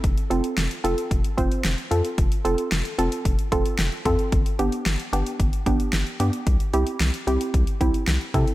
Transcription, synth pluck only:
\new Staff \with { instrumentName = "Synth pluck" } { \time 4/4 \key f \lydian \tempo 4 = 112 r8 <c' f' a'>8 r8 <c' f' a'>8 r8 <c' f' c''>8 r8 <c' f' a'>8 | r8 <c' f' a'>8 r8 <c' f' a'>8 r8 <c' f' a'>8 r8 <c' f' a'>8 | r8 <b d' g'>8 r8 <b d' g'>8 r8 <b d' g'>8 r8 <b d' g'>8 | r8 <c' e' g'>8 r8 <c' e' g'>8 r8 <c' e' g'>8 r8 <c' e' a'>8 | }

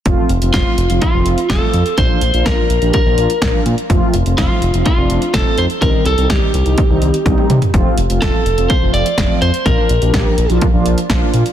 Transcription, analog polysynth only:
\new Staff \with { instrumentName = "Analog polysynth" } { \time 4/4 \key f \mixolydian \tempo 4 = 125 <f a c' f'>8 r16 <f a c' f'>8. r16 <f a c' f'>16 r16 <f a c' f'>8 r16 <f a c' f'>8. r16 | <f bes d' f'>8 r16 <f bes d' f'>8. r16 <f bes d' g'>16 r16 <f bes d' f'>8 r16 <f bes d' f'>8. r16 | <f a c' f'>8 r16 <f a c' f'>8. r16 <f a c' f'>16 r16 <f a c' d'>8 r16 <f a c' ees'>8. r16 | <ees g c' ees'>8 r16 <ees g c' ees'>8. r16 <ees g c' ees'>16 r16 <ees g c' ees'>8 r16 <ees g c' ees'>8. r16 |
<f a c' f'>8 r16 <f a c' f'>8. r16 <f a c' f'>16 r16 <f a c' f'>8 r16 <f a c' f'>8. r16 | <f bes d' f'>8 r16 <f bes d' g'>8. r16 <f bes d' f'>16 r16 <f bes d' f'>8 r16 <f bes d' f'>8. r16 | }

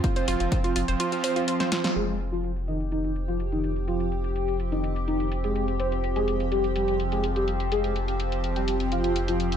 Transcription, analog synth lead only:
\new Staff \with { instrumentName = "Analog synth lead" } { \time 4/4 \key c \phrygian \tempo 4 = 125 r1 | aes'8 r16 f'8 r16 ees'16 r16 ees'8 r16 f'16 r16 ees'8 r16 | f'8 r4 r16 ees'8 r16 ees'8 r16 aes'8 r16 | c''8 r16 aes'8 r16 g'16 r16 g'8 r16 aes'16 r16 g'8 r16 |
aes'8 r4 r16 g'8 r16 f'8 r16 f'8 r16 | }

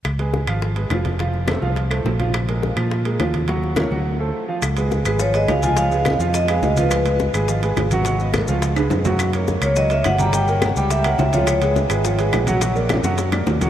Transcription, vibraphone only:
\new Staff \with { instrumentName = "Vibraphone" } { \time 4/4 \key des \mixolydian \tempo 4 = 210 r1 | r1 | r1 | r1 |
r4. ces''8 des''8 ees''8 f''8 aes''8 | f''2 ees''8 f''8 ees''8 ces''8 | ces''4 r2. | r1 |
r4. des''8 ees''8 fes''8 ges''8 bes''8 | g''2 fes''8 ges''8 fes''8 des''8 | des''4 r2. | r1 | }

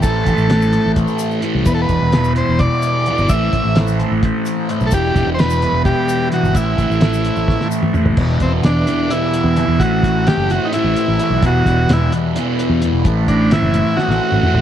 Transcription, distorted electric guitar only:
\new Staff \with { instrumentName = "Distorted electric guitar" } { \clef bass \time 7/8 \key e \minor \tempo 4 = 129 <a, e a>8 <e a>8 <a, e a>8 <e a>4. <a, e a>8 | <e, b, e>8 <b, e>8 <e, b, e>8 <b, e>4. <e, b, e>8 | <a, e a>8 <e a>8 <a, e a>8 <e a>4. <a, e a>8 | <e, b, e>8 <b, e>8 <e, b, e>8 <b, e>4. <e, b, e>8 |
<a, e a>8 <e a>8 <a, e a>8 <e a>4. <a, e a>8 | <e, b, e>4 <e, b, e>8 <b, e>8 <e, b, e>4 <e, b, e>8 | <a, e a>4 <a, e a>8 <e a>8 <a, e a>4 <a, e a>8 | <e, b, e>4 <e, b, e>8 <b, e>8 <e, b, e>4 <e, b, e>8 |
<a, e a>4 <a, e a>8 <e a>8 <a, e a>4 <a, e a>8 | }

